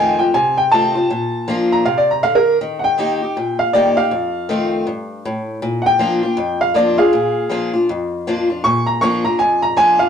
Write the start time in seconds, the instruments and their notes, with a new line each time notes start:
Already playing: steel-string acoustic guitar F2 D#3 A3 C4 F4, upright piano G#5
0.19 steel-string acoustic guitar C4 F4, upright piano G5
0.34 steel-string acoustic guitar C3, upright piano G#5
0.58 upright piano G5
0.72 steel-string acoustic guitar D#3 A3 C4 F4, upright piano A5
0.95 steel-string acoustic guitar C4 F4
1.10 steel-string acoustic guitar A#2
1.48 steel-string acoustic guitar F3 A#3 D4 F4
1.72 upright piano A#5
1.85 steel-string acoustic guitar C3, upright piano F5
1.98 upright piano D5
2.11 upright piano A#5
2.23 steel-string acoustic guitar D3, upright piano F5
2.35 upright piano A#4
2.61 steel-string acoustic guitar D#3
2.79 upright piano F#5
2.84 upright piano G5
2.98 steel-string acoustic guitar D#3 A#3 D#4 G4
3.22 steel-string acoustic guitar D#4 G4
3.37 steel-string acoustic guitar A#2
3.59 upright piano F5
3.73 steel-string acoustic guitar D#3 A#3 D#4 G4, upright piano D5
3.97 steel-string acoustic guitar D#4 G4, upright piano F5
4.11 steel-string acoustic guitar F2
4.49 steel-string acoustic guitar D#3 A3 C4 F4
4.87 steel-string acoustic guitar G2
5.25 steel-string acoustic guitar A2
5.62 steel-string acoustic guitar A#2
5.82 upright piano F#5
5.86 upright piano G5
5.99 steel-string acoustic guitar F3 A#3 D4 F4
6.23 steel-string acoustic guitar D4 F4
6.37 steel-string acoustic guitar F2
6.61 upright piano F5
6.74 steel-string acoustic guitar F3 A#3 D4 F4, upright piano D5
6.98 steel-string acoustic guitar D4 F4, upright piano G#4 F5
7.13 steel-string acoustic guitar A#2
7.49 steel-string acoustic guitar F3 A#3 D4 F4
7.73 steel-string acoustic guitar D4 F4
7.89 steel-string acoustic guitar F2
8.27 steel-string acoustic guitar F3 A#3 D4 F4
8.50 steel-string acoustic guitar D4 F4
8.64 steel-string acoustic guitar A#2, upright piano C#6
8.86 upright piano A#5
9.01 steel-string acoustic guitar F3 A#3 D4 F4, upright piano C#6
9.24 steel-string acoustic guitar D4 F4, upright piano A#5
9.39 steel-string acoustic guitar F2, upright piano G#5
9.62 upright piano A#5
9.77 steel-string acoustic guitar F3 A#3 D4 F4, upright piano G#5
9.99 steel-string acoustic guitar D4 F4, upright piano F5